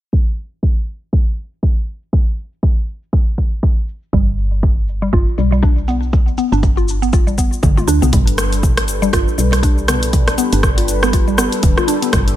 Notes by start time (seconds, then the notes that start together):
0.13 kick
0.63 kick
0.88 shaker
1.13 kick
1.38 shaker
1.63 kick, shaker
1.78 shaker
1.88 shaker
2.03 shaker
2.13 kick, shaker
2.28 shaker
2.38 shaker
2.53 shaker
2.63 kick, shaker
2.78 shaker
2.88 shaker
3.03 shaker
3.13 kick, shaker
3.28 shaker
3.38 kick, shaker
3.53 shaker
3.63 kick, shaker
3.78 shaker
3.88 shaker
4.03 shaker
4.13 G1 G3, kick, shaker
4.28 shaker
4.38 shaker
4.52 shaker
4.63 kick, shaker
4.78 shaker
4.88 shaker
5.02 G3, shaker
5.13 G1 F4, kick, shaker
5.28 shaker
5.38 B1 G3, shaker
5.52 G3, shaker
5.63 D4, kick, shaker
5.78 shaker
5.88 B3, shaker
6.02 shaker
6.13 kick, shaker
6.28 shaker
6.38 B3, shaker
6.52 G1 D4, shaker
6.63 kick, shaker
6.77 F4, shaker
6.88 shaker
7.02 B3, shaker
7.13 F4, kick, shaker
7.27 G3, shaker
7.38 B3, kick, shaker
7.53 shaker
7.63 G1 D3, kick, high tom, shaker
7.77 F4, high tom, shaker
7.88 D2 D4, shaker
8.02 B1 B3, mid tom, shaker
8.13 G1 G3 D4 A4 B4, kick, closed hi-hat, mid tom, shaker
8.27 closed hi-hat, shaker
8.38 cross-stick, closed hi-hat, shaker
8.53 closed hi-hat, shaker
8.63 kick, mid tom, shaker
8.77 cross-stick, closed hi-hat, shaker
8.88 closed hi-hat, shaker
9.02 G3, shaker
9.13 G1 F4, kick, cross-stick, closed hi-hat, shaker
9.28 shaker
9.38 B1 G3, shaker
9.52 G3, cross-stick, closed hi-hat, shaker
9.63 D4, kick, closed hi-hat, shaker
9.78 shaker
9.88 B3, cross-stick, closed hi-hat, mid tom, shaker
10.03 closed hi-hat, shaker
10.13 kick, closed hi-hat, mid tom, shaker
10.28 cross-stick, closed hi-hat, shaker
10.38 B3, closed hi-hat, shaker
10.53 G1 D4, closed hi-hat, shaker
10.63 kick, cross-stick, mid tom, shaker
10.78 F4, closed hi-hat, shaker
10.88 closed hi-hat, shaker
11.03 B3, cross-stick, shaker
11.13 F4, kick, closed hi-hat, shaker
11.28 G3, shaker
11.38 B3, cross-stick, shaker
11.52 closed hi-hat, shaker
11.63 D1 D3, kick, closed hi-hat, shaker
11.77 F4, cross-stick, shaker
11.88 D4, closed hi-hat, shaker
12.02 B3, closed hi-hat, shaker
12.13 G1 G3, kick, cross-stick, closed hi-hat, mid tom, shaker
12.28 closed hi-hat, shaker